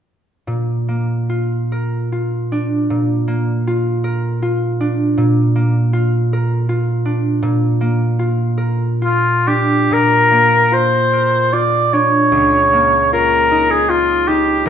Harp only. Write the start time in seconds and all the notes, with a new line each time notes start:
0.47 A#2
0.88 A#3
1.29 F4
1.72 A#4
2.12 F4
2.52 D4
2.90 A#2
3.28 A#3
3.67 F4
4.04 A#4
4.42 F4
4.80 D4
5.17 A#2
5.56 A#3
5.93 F4
6.33 A#4
6.69 F4
7.05 D4
7.42 A#2
7.81 A#3
8.19 F4
8.57 A#4
9.02 F4
9.47 D4
9.91 A#2
10.31 A#3
10.72 F4
11.13 A#4
11.53 F4
11.93 D4
12.32 C#2
12.73 A#3
13.13 F4
13.51 D#4
13.89 F4
14.28 D#4
14.65 A#1